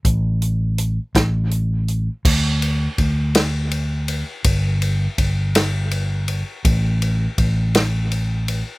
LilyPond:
<<
  \new Staff \with { instrumentName = "Fingered electric bass" } { \clef bass \time 6/8 \key a \mixolydian \tempo 4. = 55 a,,4. a,,4. | d,4 d,2 | g,,4 g,,2 | a,,4 a,,2 | }
  \new DrumStaff \with { instrumentName = "Drums" } \drummode { \time 6/8 <hh bd>8 hh8 hh8 <hh bd sn>8 hh8 hh8 | <cymc bd>8 cymr8 <bd cymr>8 <cymr sn>8 cymr8 cymr8 | <bd cymr>8 cymr8 <bd cymr>8 <cymr sn>8 cymr8 cymr8 | <bd cymr>8 cymr8 <bd cymr>8 <cymr sn>8 cymr8 cymr8 | }
>>